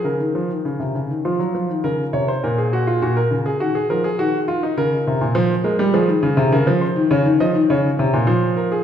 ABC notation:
X:1
M:3/4
L:1/16
Q:1/4=102
K:Bbm
V:1 name="Grand piano"
B8 F4 | B2 d c B A G F G B2 A | G A B A G2 F E B4 | c2 B2 A4 B2 c2 |
d2 e2 d4 c2 B A |]
V:2 name="Grand piano" clef=bass
D, E, F, E, D, C, D, E, F, G, F, E, | D,2 C,2 B,,4 B,,2 D,2 | E,2 F,2 E,4 D,2 C, B,, | F,2 A, =G, F, E, D, C, D, F,2 E, |
D, E, F, E, D,2 C, B,, F,4 |]